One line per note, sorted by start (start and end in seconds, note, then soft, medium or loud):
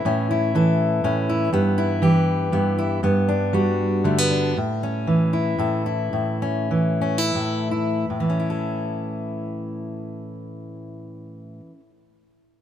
0.00 0.54 E3 medium
0.00 0.30 E4 medium
0.05 1.03 A2 medium
0.05 1.03 C#4 medium
0.31 1.28 E4 medium
0.55 2.01 E3 medium
0.55 1.50 A4 medium
1.04 1.50 A2 medium
1.04 1.50 C#4 medium
1.29 1.50 E4 medium
1.53 2.51 G2 medium
1.53 2.52 B3 medium
1.78 2.77 E4 medium
2.02 3.02 E3 medium
2.02 2.99 G4 medium
2.52 2.99 G2 medium
2.52 3.03 B3 medium
2.78 3.00 E4 medium
3.03 4.53 G2 medium
3.03 4.05 B3 medium
3.29 4.30 D4 medium
3.53 4.53 G3 medium
3.53 4.57 F#4 medium
4.04 4.53 D3 medium
4.04 4.18 A3 medium
4.18 4.56 B3 soft
4.31 4.53 D4 medium
4.57 5.58 A2 medium
4.83 6.42 C#4 medium
5.07 6.70 E3 medium
5.33 5.85 E4 medium
5.59 6.12 A2 medium
5.59 7.35 A4 medium
5.86 7.01 E4 soft
6.13 7.34 A2 medium
6.42 7.00 C#4 soft
6.71 8.19 E3 medium
7.01 7.18 C#4 medium
7.18 7.70 E4 soft
7.35 8.04 A2 soft
7.35 8.05 A4 soft
7.71 8.05 E4 soft
8.10 11.60 A2 soft
8.20 11.70 E3 soft
8.30 11.80 C#4 soft
8.40 11.90 E4 soft
8.50 12.00 A4 soft